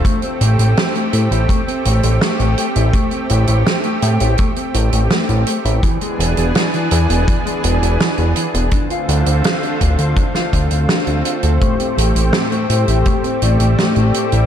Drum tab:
HH |xxxxxxxxxxxxxxxx|xxxxxxxxxxxxxxxx|xxxxxxxxxxxxxxxx|xxxxxxxxxxxxxxxx|
SD |----o-------o---|----o-------o---|----o-------o---|----o----o--o---|
BD |o-------o-------|o-------o-------|o-------o-------|o-----o-o-o-----|

HH |xxxxxxxxxxxxxxxx|
SD |----o-------o---|
BD |o-------o-------|